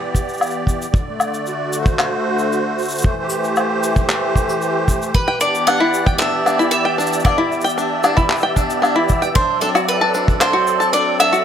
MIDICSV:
0, 0, Header, 1, 6, 480
1, 0, Start_track
1, 0, Tempo, 526316
1, 855, Time_signature, 4, 2, 24, 8
1, 10439, End_track
2, 0, Start_track
2, 0, Title_t, "Synth texture"
2, 0, Program_c, 0, 99
2, 4688, Note_on_c, 0, 76, 95
2, 4691, Note_on_c, 0, 88, 84
2, 10439, Note_off_c, 0, 76, 0
2, 10439, Note_off_c, 0, 88, 0
2, 10439, End_track
3, 0, Start_track
3, 0, Title_t, "Mandolin"
3, 0, Program_c, 1, 25
3, 4692, Note_on_c, 1, 71, 88
3, 4928, Note_off_c, 1, 71, 0
3, 4932, Note_on_c, 1, 74, 87
3, 5170, Note_on_c, 1, 78, 106
3, 5181, Note_off_c, 1, 74, 0
3, 5619, Note_off_c, 1, 78, 0
3, 5640, Note_on_c, 1, 76, 97
3, 6110, Note_off_c, 1, 76, 0
3, 6121, Note_on_c, 1, 76, 89
3, 6574, Note_off_c, 1, 76, 0
3, 6610, Note_on_c, 1, 74, 79
3, 7296, Note_off_c, 1, 74, 0
3, 8529, Note_on_c, 1, 72, 96
3, 8763, Note_off_c, 1, 72, 0
3, 8767, Note_on_c, 1, 69, 85
3, 8833, Note_off_c, 1, 69, 0
3, 9015, Note_on_c, 1, 71, 88
3, 9490, Note_off_c, 1, 71, 0
3, 9493, Note_on_c, 1, 72, 95
3, 9966, Note_off_c, 1, 72, 0
3, 9970, Note_on_c, 1, 74, 93
3, 10196, Note_off_c, 1, 74, 0
3, 10215, Note_on_c, 1, 76, 99
3, 10439, Note_off_c, 1, 76, 0
3, 10439, End_track
4, 0, Start_track
4, 0, Title_t, "Five-string banjo"
4, 0, Program_c, 2, 105
4, 4812, Note_on_c, 2, 79, 88
4, 4922, Note_off_c, 2, 79, 0
4, 4933, Note_on_c, 2, 62, 69
4, 5162, Note_off_c, 2, 62, 0
4, 5173, Note_on_c, 2, 62, 70
4, 5282, Note_off_c, 2, 62, 0
4, 5293, Note_on_c, 2, 64, 88
4, 5522, Note_off_c, 2, 64, 0
4, 5530, Note_on_c, 2, 79, 85
4, 5641, Note_off_c, 2, 79, 0
4, 5651, Note_on_c, 2, 62, 75
4, 5881, Note_off_c, 2, 62, 0
4, 5893, Note_on_c, 2, 62, 62
4, 6002, Note_off_c, 2, 62, 0
4, 6013, Note_on_c, 2, 64, 88
4, 6242, Note_off_c, 2, 64, 0
4, 6248, Note_on_c, 2, 79, 98
4, 6360, Note_off_c, 2, 79, 0
4, 6368, Note_on_c, 2, 62, 67
4, 6598, Note_off_c, 2, 62, 0
4, 6609, Note_on_c, 2, 62, 70
4, 6720, Note_off_c, 2, 62, 0
4, 6730, Note_on_c, 2, 64, 88
4, 6961, Note_off_c, 2, 64, 0
4, 6971, Note_on_c, 2, 79, 90
4, 7081, Note_off_c, 2, 79, 0
4, 7092, Note_on_c, 2, 62, 73
4, 7322, Note_off_c, 2, 62, 0
4, 7331, Note_on_c, 2, 62, 72
4, 7441, Note_off_c, 2, 62, 0
4, 7448, Note_on_c, 2, 64, 92
4, 7680, Note_off_c, 2, 64, 0
4, 7688, Note_on_c, 2, 79, 87
4, 7800, Note_off_c, 2, 79, 0
4, 7808, Note_on_c, 2, 62, 64
4, 8033, Note_off_c, 2, 62, 0
4, 8044, Note_on_c, 2, 62, 75
4, 8158, Note_off_c, 2, 62, 0
4, 8168, Note_on_c, 2, 64, 87
4, 8400, Note_off_c, 2, 64, 0
4, 8409, Note_on_c, 2, 79, 91
4, 8520, Note_off_c, 2, 79, 0
4, 8533, Note_on_c, 2, 62, 72
4, 8762, Note_off_c, 2, 62, 0
4, 8774, Note_on_c, 2, 62, 71
4, 8883, Note_off_c, 2, 62, 0
4, 8892, Note_on_c, 2, 66, 102
4, 9122, Note_off_c, 2, 66, 0
4, 9132, Note_on_c, 2, 81, 99
4, 9241, Note_off_c, 2, 81, 0
4, 9253, Note_on_c, 2, 62, 71
4, 9480, Note_off_c, 2, 62, 0
4, 9491, Note_on_c, 2, 62, 86
4, 9601, Note_off_c, 2, 62, 0
4, 9606, Note_on_c, 2, 66, 93
4, 9839, Note_off_c, 2, 66, 0
4, 9850, Note_on_c, 2, 81, 93
4, 9961, Note_off_c, 2, 81, 0
4, 9967, Note_on_c, 2, 62, 75
4, 10199, Note_off_c, 2, 62, 0
4, 10213, Note_on_c, 2, 62, 72
4, 10322, Note_off_c, 2, 62, 0
4, 10329, Note_on_c, 2, 66, 94
4, 10439, Note_off_c, 2, 66, 0
4, 10439, End_track
5, 0, Start_track
5, 0, Title_t, "Accordion"
5, 0, Program_c, 3, 21
5, 0, Note_on_c, 3, 52, 79
5, 0, Note_on_c, 3, 59, 82
5, 0, Note_on_c, 3, 67, 77
5, 0, Note_on_c, 3, 74, 73
5, 856, Note_off_c, 3, 52, 0
5, 857, Note_off_c, 3, 59, 0
5, 859, Note_off_c, 3, 67, 0
5, 861, Note_on_c, 3, 50, 68
5, 992, Note_on_c, 3, 57, 77
5, 1346, Note_on_c, 3, 66, 65
5, 1624, Note_off_c, 3, 74, 0
5, 1658, Note_on_c, 3, 72, 79
5, 2776, Note_off_c, 3, 66, 0
5, 2778, Note_off_c, 3, 50, 0
5, 2783, Note_on_c, 3, 52, 95
5, 2937, Note_on_c, 3, 67, 85
5, 4694, Note_off_c, 3, 72, 0
5, 4702, Note_off_c, 3, 57, 0
5, 4949, Note_on_c, 3, 59, 72
5, 5108, Note_on_c, 3, 74, 82
5, 8534, Note_on_c, 3, 54, 72
5, 8536, Note_off_c, 3, 59, 0
5, 8539, Note_off_c, 3, 52, 0
5, 8540, Note_off_c, 3, 67, 0
5, 8780, Note_on_c, 3, 60, 89
5, 9055, Note_on_c, 3, 69, 78
5, 10439, Note_off_c, 3, 54, 0
5, 10439, Note_off_c, 3, 60, 0
5, 10439, Note_off_c, 3, 69, 0
5, 10439, Note_off_c, 3, 74, 0
5, 10439, End_track
6, 0, Start_track
6, 0, Title_t, "Drums"
6, 134, Note_on_c, 9, 36, 53
6, 141, Note_on_c, 9, 82, 83
6, 225, Note_off_c, 9, 36, 0
6, 232, Note_off_c, 9, 82, 0
6, 262, Note_on_c, 9, 82, 26
6, 303, Note_off_c, 9, 82, 0
6, 303, Note_on_c, 9, 82, 28
6, 341, Note_off_c, 9, 82, 0
6, 341, Note_on_c, 9, 82, 34
6, 375, Note_on_c, 9, 77, 61
6, 381, Note_off_c, 9, 82, 0
6, 381, Note_on_c, 9, 82, 42
6, 385, Note_off_c, 9, 82, 0
6, 385, Note_on_c, 9, 82, 49
6, 420, Note_off_c, 9, 82, 0
6, 420, Note_on_c, 9, 82, 45
6, 460, Note_off_c, 9, 82, 0
6, 460, Note_on_c, 9, 82, 46
6, 466, Note_off_c, 9, 77, 0
6, 551, Note_off_c, 9, 82, 0
6, 610, Note_on_c, 9, 36, 49
6, 625, Note_on_c, 9, 82, 73
6, 701, Note_off_c, 9, 36, 0
6, 716, Note_off_c, 9, 82, 0
6, 746, Note_on_c, 9, 82, 60
6, 837, Note_off_c, 9, 82, 0
6, 855, Note_on_c, 9, 36, 122
6, 868, Note_on_c, 9, 82, 47
6, 947, Note_off_c, 9, 36, 0
6, 959, Note_off_c, 9, 82, 0
6, 1094, Note_on_c, 9, 77, 66
6, 1098, Note_on_c, 9, 82, 80
6, 1185, Note_off_c, 9, 77, 0
6, 1189, Note_off_c, 9, 82, 0
6, 1222, Note_on_c, 9, 82, 48
6, 1314, Note_off_c, 9, 82, 0
6, 1334, Note_on_c, 9, 82, 52
6, 1425, Note_off_c, 9, 82, 0
6, 1575, Note_on_c, 9, 82, 84
6, 1667, Note_off_c, 9, 82, 0
6, 1694, Note_on_c, 9, 36, 106
6, 1695, Note_on_c, 9, 82, 58
6, 1785, Note_off_c, 9, 36, 0
6, 1786, Note_off_c, 9, 82, 0
6, 1815, Note_on_c, 9, 39, 66
6, 1815, Note_on_c, 9, 77, 70
6, 1816, Note_on_c, 9, 82, 47
6, 1906, Note_off_c, 9, 39, 0
6, 1906, Note_off_c, 9, 77, 0
6, 1907, Note_off_c, 9, 82, 0
6, 2175, Note_on_c, 9, 82, 47
6, 2267, Note_off_c, 9, 82, 0
6, 2304, Note_on_c, 9, 82, 42
6, 2395, Note_off_c, 9, 82, 0
6, 2542, Note_on_c, 9, 82, 37
6, 2572, Note_off_c, 9, 82, 0
6, 2572, Note_on_c, 9, 82, 45
6, 2599, Note_off_c, 9, 82, 0
6, 2599, Note_on_c, 9, 82, 44
6, 2629, Note_off_c, 9, 82, 0
6, 2629, Note_on_c, 9, 82, 53
6, 2644, Note_off_c, 9, 82, 0
6, 2644, Note_on_c, 9, 82, 60
6, 2660, Note_off_c, 9, 82, 0
6, 2660, Note_on_c, 9, 82, 52
6, 2690, Note_off_c, 9, 82, 0
6, 2690, Note_on_c, 9, 82, 61
6, 2719, Note_off_c, 9, 82, 0
6, 2719, Note_on_c, 9, 82, 65
6, 2749, Note_off_c, 9, 82, 0
6, 2749, Note_on_c, 9, 82, 70
6, 2764, Note_off_c, 9, 82, 0
6, 2764, Note_on_c, 9, 82, 39
6, 2776, Note_on_c, 9, 36, 108
6, 2856, Note_off_c, 9, 82, 0
6, 2868, Note_off_c, 9, 36, 0
6, 3006, Note_on_c, 9, 82, 77
6, 3098, Note_off_c, 9, 82, 0
6, 3137, Note_on_c, 9, 82, 51
6, 3229, Note_off_c, 9, 82, 0
6, 3247, Note_on_c, 9, 82, 50
6, 3257, Note_on_c, 9, 77, 69
6, 3338, Note_off_c, 9, 82, 0
6, 3348, Note_off_c, 9, 77, 0
6, 3495, Note_on_c, 9, 82, 80
6, 3587, Note_off_c, 9, 82, 0
6, 3613, Note_on_c, 9, 82, 54
6, 3614, Note_on_c, 9, 36, 87
6, 3704, Note_off_c, 9, 82, 0
6, 3705, Note_off_c, 9, 36, 0
6, 3732, Note_on_c, 9, 82, 49
6, 3734, Note_on_c, 9, 39, 70
6, 3824, Note_off_c, 9, 82, 0
6, 3825, Note_off_c, 9, 39, 0
6, 3972, Note_on_c, 9, 36, 58
6, 3982, Note_on_c, 9, 82, 92
6, 4063, Note_off_c, 9, 36, 0
6, 4073, Note_off_c, 9, 82, 0
6, 4098, Note_on_c, 9, 82, 52
6, 4189, Note_off_c, 9, 82, 0
6, 4210, Note_on_c, 9, 82, 45
6, 4301, Note_off_c, 9, 82, 0
6, 4450, Note_on_c, 9, 36, 54
6, 4455, Note_on_c, 9, 82, 85
6, 4541, Note_off_c, 9, 36, 0
6, 4547, Note_off_c, 9, 82, 0
6, 4579, Note_on_c, 9, 82, 63
6, 4671, Note_off_c, 9, 82, 0
6, 4694, Note_on_c, 9, 36, 104
6, 4695, Note_on_c, 9, 82, 45
6, 4785, Note_off_c, 9, 36, 0
6, 4786, Note_off_c, 9, 82, 0
6, 4929, Note_on_c, 9, 82, 81
6, 5020, Note_off_c, 9, 82, 0
6, 5059, Note_on_c, 9, 82, 58
6, 5150, Note_off_c, 9, 82, 0
6, 5176, Note_on_c, 9, 77, 77
6, 5181, Note_on_c, 9, 82, 49
6, 5267, Note_off_c, 9, 77, 0
6, 5272, Note_off_c, 9, 82, 0
6, 5414, Note_on_c, 9, 82, 85
6, 5505, Note_off_c, 9, 82, 0
6, 5532, Note_on_c, 9, 36, 109
6, 5537, Note_on_c, 9, 82, 52
6, 5624, Note_off_c, 9, 36, 0
6, 5629, Note_off_c, 9, 82, 0
6, 5655, Note_on_c, 9, 39, 72
6, 5656, Note_on_c, 9, 82, 53
6, 5746, Note_off_c, 9, 39, 0
6, 5748, Note_off_c, 9, 82, 0
6, 5894, Note_on_c, 9, 77, 68
6, 5899, Note_on_c, 9, 82, 87
6, 5985, Note_off_c, 9, 77, 0
6, 5991, Note_off_c, 9, 82, 0
6, 6019, Note_on_c, 9, 82, 52
6, 6110, Note_off_c, 9, 82, 0
6, 6132, Note_on_c, 9, 82, 51
6, 6223, Note_off_c, 9, 82, 0
6, 6382, Note_on_c, 9, 82, 80
6, 6443, Note_off_c, 9, 82, 0
6, 6443, Note_on_c, 9, 82, 66
6, 6499, Note_off_c, 9, 82, 0
6, 6499, Note_on_c, 9, 82, 60
6, 6504, Note_off_c, 9, 82, 0
6, 6504, Note_on_c, 9, 82, 57
6, 6564, Note_off_c, 9, 82, 0
6, 6564, Note_on_c, 9, 82, 42
6, 6612, Note_on_c, 9, 36, 106
6, 6620, Note_on_c, 9, 77, 69
6, 6626, Note_off_c, 9, 82, 0
6, 6626, Note_on_c, 9, 82, 41
6, 6703, Note_off_c, 9, 36, 0
6, 6711, Note_off_c, 9, 77, 0
6, 6717, Note_off_c, 9, 82, 0
6, 6858, Note_on_c, 9, 82, 36
6, 6940, Note_off_c, 9, 82, 0
6, 6940, Note_on_c, 9, 82, 49
6, 6977, Note_off_c, 9, 82, 0
6, 6977, Note_on_c, 9, 82, 51
6, 7015, Note_off_c, 9, 82, 0
6, 7015, Note_on_c, 9, 82, 60
6, 7098, Note_off_c, 9, 82, 0
6, 7098, Note_on_c, 9, 82, 49
6, 7189, Note_off_c, 9, 82, 0
6, 7329, Note_on_c, 9, 82, 83
6, 7334, Note_on_c, 9, 77, 80
6, 7420, Note_off_c, 9, 82, 0
6, 7425, Note_off_c, 9, 77, 0
6, 7455, Note_on_c, 9, 82, 47
6, 7457, Note_on_c, 9, 36, 90
6, 7546, Note_off_c, 9, 82, 0
6, 7548, Note_off_c, 9, 36, 0
6, 7568, Note_on_c, 9, 39, 78
6, 7571, Note_on_c, 9, 82, 21
6, 7594, Note_off_c, 9, 82, 0
6, 7594, Note_on_c, 9, 82, 25
6, 7619, Note_off_c, 9, 82, 0
6, 7619, Note_on_c, 9, 82, 30
6, 7642, Note_off_c, 9, 82, 0
6, 7642, Note_on_c, 9, 82, 33
6, 7659, Note_off_c, 9, 39, 0
6, 7667, Note_off_c, 9, 82, 0
6, 7667, Note_on_c, 9, 82, 38
6, 7758, Note_off_c, 9, 82, 0
6, 7811, Note_on_c, 9, 36, 54
6, 7814, Note_on_c, 9, 82, 89
6, 7903, Note_off_c, 9, 36, 0
6, 7905, Note_off_c, 9, 82, 0
6, 7935, Note_on_c, 9, 82, 55
6, 8027, Note_off_c, 9, 82, 0
6, 8056, Note_on_c, 9, 77, 76
6, 8061, Note_on_c, 9, 82, 51
6, 8147, Note_off_c, 9, 77, 0
6, 8152, Note_off_c, 9, 82, 0
6, 8289, Note_on_c, 9, 82, 81
6, 8297, Note_on_c, 9, 36, 55
6, 8380, Note_off_c, 9, 82, 0
6, 8388, Note_off_c, 9, 36, 0
6, 8414, Note_on_c, 9, 82, 52
6, 8505, Note_off_c, 9, 82, 0
6, 8533, Note_on_c, 9, 36, 104
6, 8534, Note_on_c, 9, 82, 45
6, 8624, Note_off_c, 9, 36, 0
6, 8626, Note_off_c, 9, 82, 0
6, 8767, Note_on_c, 9, 82, 70
6, 8858, Note_off_c, 9, 82, 0
6, 8892, Note_on_c, 9, 77, 68
6, 8900, Note_on_c, 9, 82, 59
6, 8983, Note_off_c, 9, 77, 0
6, 8991, Note_off_c, 9, 82, 0
6, 9015, Note_on_c, 9, 82, 46
6, 9106, Note_off_c, 9, 82, 0
6, 9250, Note_on_c, 9, 82, 77
6, 9341, Note_off_c, 9, 82, 0
6, 9377, Note_on_c, 9, 36, 93
6, 9383, Note_on_c, 9, 82, 52
6, 9468, Note_off_c, 9, 36, 0
6, 9474, Note_off_c, 9, 82, 0
6, 9493, Note_on_c, 9, 39, 70
6, 9495, Note_on_c, 9, 77, 77
6, 9500, Note_on_c, 9, 82, 52
6, 9584, Note_off_c, 9, 39, 0
6, 9586, Note_off_c, 9, 77, 0
6, 9592, Note_off_c, 9, 82, 0
6, 9733, Note_on_c, 9, 82, 86
6, 9824, Note_off_c, 9, 82, 0
6, 9861, Note_on_c, 9, 82, 61
6, 9952, Note_off_c, 9, 82, 0
6, 9978, Note_on_c, 9, 82, 47
6, 10069, Note_off_c, 9, 82, 0
6, 10213, Note_on_c, 9, 77, 85
6, 10214, Note_on_c, 9, 82, 76
6, 10304, Note_off_c, 9, 77, 0
6, 10306, Note_off_c, 9, 82, 0
6, 10336, Note_on_c, 9, 82, 59
6, 10427, Note_off_c, 9, 82, 0
6, 10439, End_track
0, 0, End_of_file